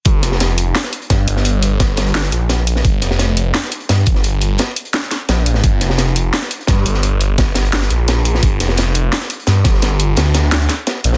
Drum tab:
HH |x---x---x---x---x---x-x-x---x---|x---x---x---x-x-xxx-x---x---x---|x---x---x---x---x---x-x-x---x---|x---x---x---x-x-x---x---x---x---|
SD |----o-o-o-------o-o-----o-----o-|--------o---o---ooo-----o-----o-|----o-o-o-------o-o-----o-----o-|--------o-------o---o---o-----o-|
BD |o-----------------------o-------|--------o-----------------------|o---------------------------o---|--------------------------------|

HH |x---x---x---x---x---x-x-x---x---|x---x---x---x-x-xxx-x---x---x---|x---x---x---x---x---x-x-x---x---|x---x---x---x---x---x---x---x---|
SD |----o-o-o-------o-o-----o-----o-|--------o---o---ooo-----o-----o-|----o-o-o-------o-o-----o---o-o-|o-------o---o---o---o---o-----o-|
BD |o-----------------------o-------|--------o-----------------------|o---------------------------o---|--------------------------------|